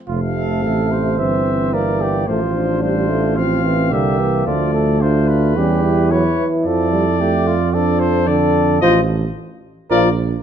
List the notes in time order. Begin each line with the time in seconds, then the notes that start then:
0.07 F1 C3 A3 F4 F5
0.37 A4
0.64 A1 A4
0.92 C5
1.18 G1 E3 C4 E5
1.73 A#3 A#4 D5
2.01 G4
2.27 A1 F3 A3 F4 C5
2.56 D4
2.82 G3 F4 C5
3.09 A3
3.37 F3 C4 F5
3.65 E3
3.91 C2 D3 A#3 G4 E5
4.19 E3
4.46 D2 F3 A3 F4 D5
4.74 A4
5.00 A3 D4 F4 C5
5.28 B4
5.56 E2 G3 C#4 G4
5.84 E4
6.11 F#3 B4 C#5
6.39 E3
6.64 F2 F3 A4 D5
6.93 G3
7.20 A3 G4
7.47 F4
7.73 F3 D4 A4 D5
7.99 C5
8.27 D3 D4 A4 D5
8.81 A1 F3 F4 C5 D#5
9.90 A#1 F3 F4 A#4 D5